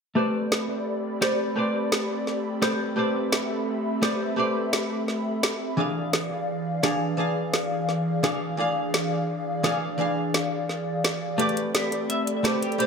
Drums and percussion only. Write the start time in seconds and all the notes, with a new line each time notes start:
0.52 snare
1.22 snare
1.92 snare
2.27 snare
2.62 snare
3.32 snare
4.03 snare
4.73 snare
5.08 snare
5.43 snare
6.13 snare
6.83 snare
7.54 snare
7.89 snare
8.24 snare
8.94 snare
9.64 snare
10.34 snare
10.69 snare
11.04 snare
11.39 closed hi-hat
11.49 closed hi-hat
11.57 closed hi-hat
11.75 snare, closed hi-hat
11.92 closed hi-hat
12.10 closed hi-hat
12.27 closed hi-hat
12.45 snare, closed hi-hat
12.63 closed hi-hat
12.72 closed hi-hat
12.80 closed hi-hat